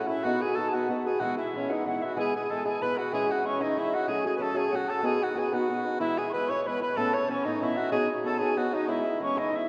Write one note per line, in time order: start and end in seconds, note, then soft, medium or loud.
0.00 0.24 F#4 medium
0.00 0.41 G#4 medium
0.07 0.25 C#4 soft
0.07 0.25 E4 medium
0.07 2.02 E4 medium
0.07 0.25 E4 soft
0.07 0.24 A4 medium
0.07 0.26 E5 medium
0.23 0.41 B3 medium
0.23 0.42 D#4 medium
0.23 0.43 F#4 loud
0.23 0.73 F#4 medium
0.23 0.42 F#4 medium
0.23 0.40 B4 medium
0.23 0.43 F#5 medium
0.41 0.57 D#4 soft
0.41 0.58 F#4 soft
0.41 0.57 G#4 medium
0.41 0.63 G#4 medium
0.41 0.57 B4 soft
0.41 0.60 G#5 medium
0.55 0.72 B3 medium
0.55 0.73 D#4 medium
0.55 0.72 F#4 medium
0.55 0.70 A4 medium
0.55 1.12 A4 medium
0.55 0.76 A5 medium
0.59 0.72 B4 medium
0.69 0.89 F#4 medium
0.69 0.73 G#4 medium
0.73 0.88 B3 medium
0.73 0.89 D#4 medium
0.73 1.20 F#4 medium
0.73 0.89 F#4 medium
0.73 0.90 B4 medium
0.73 0.90 F#5 medium
0.89 1.05 B3 medium
0.89 1.05 D#4 medium
0.89 1.05 F#4 medium
0.89 1.04 B4 medium
1.05 1.21 D#4 soft
1.05 1.21 F#4 medium
1.05 1.21 G#4 medium
1.05 1.54 G#4 medium
1.05 1.21 B4 soft
1.19 1.37 E3 medium
1.19 1.38 G#3 medium
1.19 1.37 B3 medium
1.19 1.36 E4 medium
1.19 1.37 F#4 loud
1.19 1.69 F#4 medium
1.19 1.37 F#5 medium
1.37 1.54 G#3 soft
1.37 1.53 B3 soft
1.37 1.53 E4 medium
1.37 1.52 E4 medium
1.37 1.71 E5 medium
1.54 1.69 E3 medium
1.54 1.69 G#3 medium
1.54 1.68 B3 medium
1.54 1.74 C#4 medium
1.54 1.68 E4 medium
1.54 1.82 G#4 medium
1.69 1.84 E3 medium
1.69 1.85 G#3 medium
1.69 1.85 B3 medium
1.69 1.87 D#4 medium
1.69 1.86 E4 medium
1.69 1.87 F#4 medium
1.69 1.86 F#5 medium
1.82 2.01 E3 medium
1.82 2.01 G#3 medium
1.82 2.17 G#4 soft
1.86 2.01 B3 medium
1.86 2.00 E4 medium
1.86 2.07 E4 medium
1.86 2.96 F#4 medium
1.86 2.03 F#5 medium
2.02 2.16 G#3 soft
2.02 2.17 B3 soft
2.02 2.17 E4 medium
2.02 3.66 E4 medium
2.02 2.19 F#4 medium
2.02 2.15 E5 medium
2.16 2.33 E3 medium
2.16 2.34 G#3 medium
2.16 2.34 B3 medium
2.16 2.33 E4 medium
2.16 2.34 G#4 medium
2.16 2.34 G#4 loud
2.16 2.32 G#5 medium
2.32 2.50 B3 soft
2.32 2.49 E4 soft
2.32 2.56 G#4 medium
2.32 2.52 G#4 medium
2.32 2.62 G#5 medium
2.36 2.49 G#3 soft
2.49 2.64 E3 medium
2.49 2.64 G#3 medium
2.49 2.64 B3 soft
2.49 2.64 E4 medium
2.49 2.66 A4 medium
2.49 2.71 A4 medium
2.65 2.80 E3 soft
2.65 2.81 G#3 medium
2.65 2.82 B3 medium
2.65 2.81 E4 medium
2.65 2.81 G#4 medium
2.65 3.12 G#4 medium
2.65 2.83 G#5 medium
2.81 2.97 E3 medium
2.81 2.97 G#3 medium
2.81 2.97 B3 medium
2.81 2.96 E4 medium
2.81 2.99 B4 medium
2.81 5.56 B4 medium
2.81 3.00 B5 medium
2.96 3.12 G#3 soft
2.96 3.13 B3 soft
2.96 3.12 E4 soft
2.96 3.29 F#4 medium
2.96 3.12 F#4 medium
2.96 3.14 F#5 medium
3.12 3.29 E3 medium
3.12 3.29 G#3 medium
3.12 3.28 C#4 medium
3.12 3.27 E4 medium
3.12 4.08 G#4 medium
3.12 3.32 G#4 loud
3.12 3.32 G#5 medium
3.29 3.44 G#3 soft
3.29 3.45 C#4 soft
3.29 3.44 E4 soft
3.29 3.93 F#4 medium
3.29 3.45 F#4 medium
3.29 3.47 F#5 medium
3.44 3.60 E3 medium
3.44 3.60 G#3 medium
3.44 7.29 C#4 medium
3.44 3.59 C#4 medium
3.44 3.64 C#4 medium
3.44 3.59 E4 medium
3.44 3.62 C#6 medium
3.60 3.75 E3 medium
3.60 3.76 G#3 medium
3.60 3.77 C#4 medium
3.60 3.84 D#4 medium
3.60 3.80 D#4 medium
3.60 3.77 E4 medium
3.60 3.79 D#5 medium
3.76 3.92 E3 medium
3.76 3.93 G#3 medium
3.76 3.92 C#4 medium
3.76 5.99 E4 medium
3.76 3.96 E4 medium
3.76 3.91 E4 medium
3.76 3.95 E5 medium
3.92 4.08 G#3 soft
3.92 4.07 C#4 soft
3.92 4.08 E4 medium
3.92 4.72 F#4 medium
3.92 4.09 F#4 medium
3.92 4.07 F#5 medium
4.08 4.25 F#3 medium
4.08 4.23 A3 medium
4.08 4.24 C#4 medium
4.08 4.22 F#4 medium
4.08 4.25 G#4 loud
4.08 4.25 G#4 medium
4.08 4.24 G#5 medium
4.23 4.39 A3 soft
4.23 4.38 C#4 soft
4.23 4.40 F#4 soft
4.23 4.46 G#4 medium
4.23 4.36 G#4 medium
4.23 4.41 G#5 medium
4.37 4.55 F#3 medium
4.37 4.54 A3 medium
4.37 4.54 C#4 medium
4.37 4.62 A4 medium
4.37 4.44 B4 medium
4.37 4.57 A5 medium
4.41 4.53 F#4 medium
4.41 4.58 A4 medium
4.54 4.71 F#3 medium
4.54 4.72 A3 medium
4.54 4.72 C#4 medium
4.54 4.72 F#4 medium
4.54 4.94 G#4 medium
4.54 4.77 G#4 medium
4.54 4.73 G#5 medium
4.72 4.88 F#3 medium
4.72 4.88 A3 medium
4.72 4.89 C#4 medium
4.72 5.19 F#4 medium
4.72 4.88 F#4 medium
4.72 4.91 F#4 medium
4.72 4.89 F#5 medium
4.88 5.04 A3 soft
4.88 5.03 C#4 soft
4.88 5.03 F#4 soft
4.88 5.10 A4 medium
4.88 5.07 A4 medium
4.88 5.04 A5 medium
5.03 5.20 B3 medium
5.03 5.21 D#4 medium
5.03 5.20 F#4 medium
5.03 5.36 G#4 medium
5.03 5.25 G#4 loud
5.03 5.19 B4 medium
5.03 5.23 G#5 medium
5.20 5.35 D#4 soft
5.20 5.51 F#4 medium
5.20 5.35 F#4 soft
5.20 5.40 F#4 medium
5.20 5.36 B4 soft
5.20 5.37 F#5 medium
5.35 5.52 B3 medium
5.35 5.51 D#4 medium
5.35 5.51 F#4 medium
5.35 6.16 G#4 medium
5.35 5.55 G#4 medium
5.35 5.51 B4 medium
5.35 5.52 G#5 medium
5.51 5.68 B3 medium
5.51 5.69 D#4 soft
5.51 7.78 F#4 medium
5.51 5.69 F#4 medium
5.51 6.00 F#4 medium
5.51 5.69 B4 medium
5.51 5.79 F#5 medium
5.69 5.85 B3 medium
5.69 5.85 D#4 medium
5.69 5.85 F#4 medium
5.69 5.83 B4 medium
5.84 6.00 D#4 soft
5.84 6.00 F#4 soft
5.84 6.00 B4 soft
5.99 6.17 E3 medium
5.99 6.17 G#3 medium
5.99 6.17 B3 medium
5.99 7.52 E4 medium
5.99 6.20 E4 loud
5.99 6.16 E4 medium
5.99 6.19 E5 medium
6.16 6.34 G#3 soft
6.16 6.33 B3 soft
6.16 6.33 E4 soft
6.16 7.03 G#4 medium
6.16 6.33 G#4 medium
6.16 6.31 G#5 medium
6.29 6.65 B4 medium
6.29 6.50 B5 medium
6.29 6.33 C#6 medium
6.33 6.49 E3 medium
6.33 6.49 G#3 medium
6.33 6.49 B3 medium
6.33 6.48 E4 medium
6.33 6.51 B4 medium
6.46 6.66 E4 medium
6.46 7.13 C#5 medium
6.46 6.63 C#5 medium
6.46 6.62 C#6 medium
6.50 6.64 E3 medium
6.50 6.65 G#3 medium
6.50 6.66 B3 medium
6.62 6.81 E3 medium
6.62 6.81 B4 medium
6.62 6.69 C#5 medium
6.62 6.81 B5 medium
6.62 6.68 C#6 medium
6.66 6.81 G#3 medium
6.66 6.81 B3 medium
6.66 6.79 E4 medium
6.66 6.82 B4 medium
6.80 6.97 G#3 soft
6.80 6.96 B3 soft
6.80 6.96 E4 soft
6.80 9.55 B4 medium
6.80 6.98 B4 medium
6.80 6.99 B5 medium
6.96 7.13 A2 medium
6.96 7.13 E3 medium
6.96 7.13 B3 medium
6.96 7.13 C#4 medium
6.96 7.11 E4 medium
6.96 7.15 A4 loud
6.96 7.99 A4 medium
6.96 7.16 A5 medium
7.13 7.28 B3 soft
7.13 7.29 C#4 soft
7.13 7.28 E4 soft
7.13 9.68 C#5 medium
7.13 7.31 C#5 medium
7.13 7.29 C#6 medium
7.28 7.44 E3 medium
7.28 7.44 B3 medium
7.28 7.47 C#4 medium
7.28 9.20 C#4 medium
7.28 7.44 C#4 medium
7.28 7.44 E4 medium
7.28 7.46 C#6 medium
7.44 7.62 A2 medium
7.44 7.61 E3 medium
7.44 7.62 B3 medium
7.44 7.61 C#4 medium
7.44 7.63 D#4 medium
7.44 7.69 D#4 medium
7.44 7.61 E4 medium
7.44 7.64 D#5 medium
7.62 7.77 E3 medium
7.62 7.77 B3 medium
7.62 7.77 C#4 medium
7.62 7.79 E4 medium
7.62 8.78 E4 medium
7.62 7.76 E4 medium
7.62 7.94 E5 medium
7.77 7.91 B3 soft
7.77 7.92 C#4 medium
7.77 7.92 E4 medium
7.77 7.91 F#4 medium
7.77 8.57 F#4 medium
7.92 8.09 B3 medium
7.92 8.09 D#4 medium
7.92 8.08 F#4 medium
7.92 8.08 G#4 loud
7.92 8.31 G#4 medium
7.92 8.07 C#5 medium
7.92 8.09 G#5 medium
8.08 8.24 D#4 soft
8.08 8.24 F#4 soft
8.08 8.24 C#5 soft
8.24 8.40 B3 medium
8.24 8.39 D#4 medium
8.24 8.39 F#4 medium
8.24 8.47 A4 medium
8.24 8.40 A4 medium
8.24 8.38 C#5 medium
8.24 8.40 A5 medium
8.39 8.55 B3 medium
8.39 8.56 D#4 medium
8.39 8.57 F#4 medium
8.39 8.59 G#4 medium
8.39 9.69 G#4 medium
8.39 8.56 C#5 medium
8.39 8.56 G#5 medium
8.57 8.72 B3 medium
8.57 8.73 D#4 medium
8.57 8.75 F#4 medium
8.57 9.68 F#4 medium
8.57 8.73 F#4 medium
8.57 8.71 C#5 medium
8.72 8.95 D#4 medium
8.72 8.89 D#4 medium
8.72 8.88 D#4 soft
8.72 8.88 F#4 soft
8.72 8.88 C#5 medium
8.72 8.88 D#5 medium
8.88 9.05 E3 medium
8.88 9.05 G#3 medium
8.88 9.04 B3 medium
8.88 9.20 E4 medium
8.88 9.52 E4 medium
8.88 9.03 E4 medium
8.88 9.18 E5 medium
9.04 9.19 G#3 soft
9.04 9.21 B3 soft
9.04 9.20 E4 soft
9.20 9.35 E3 medium
9.20 9.35 G#3 medium
9.20 9.34 B3 medium
9.20 9.69 C#4 medium
9.20 9.41 C#4 medium
9.20 9.34 E4 medium
9.20 9.39 C#6 medium
9.35 9.50 E3 medium
9.35 9.51 G#3 medium
9.35 9.52 B3 medium
9.35 9.59 D#4 medium
9.35 9.52 E4 medium
9.35 9.57 D#5 medium
9.39 9.59 D#4 medium
9.52 9.68 E3 medium
9.52 9.68 G#3 medium
9.52 9.68 B3 medium
9.52 9.69 E4 medium
9.52 9.67 E4 medium
9.52 9.69 E5 medium
9.57 9.69 E4 medium